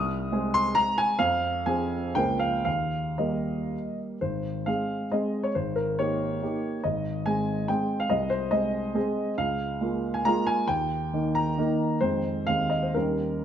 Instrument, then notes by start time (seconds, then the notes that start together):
grand piano
Already playing: C2 D#6
0.32 G#3 C4 G#4
0.54 C6
0.75 A#5
0.98 G#5
1.19 F2 F5
1.66 F3 C4 G#4 G#5
2.15 C#2 F3 A#3 A#4 G5
2.39 F5
2.65 D#2 F5
3.18 G3 A#3 A#4 D#5
4.21 G#1 C5
4.66 G#3 C4 G#4 F5
5.12 G#3 C4 G#4 D#5
5.43 C#5
5.55 G#1 C5
5.76 A#4
5.99 A#3 D#4 G4 C#5
6.42 A#3 D#4 G4
6.84 G#1 D#5
7.26 G#3 C4 G#4 G#5
7.68 G#3 C4 G#4 G5
8.00 F5
8.10 C2 D#5
8.30 C5
8.51 G#3 C4 G#4 D#5
8.95 G#3 C4 G#4
9.38 C#2 F5
9.81 G#3 A#3 F4
10.14 G#5
10.25 G#3 A#3 F4 A#5
10.47 G#5
10.68 D#2 G5
11.13 D#3 A#3 D#4
11.35 A#5
11.58 D#3 A#3 D#4
12.01 F2 D#3 G#3 C4 C5
12.47 D#2 D#3 G#3 C4 F5
12.70 D#5
12.83 C5
12.94 D#2 D#3 G3 C#4 A#4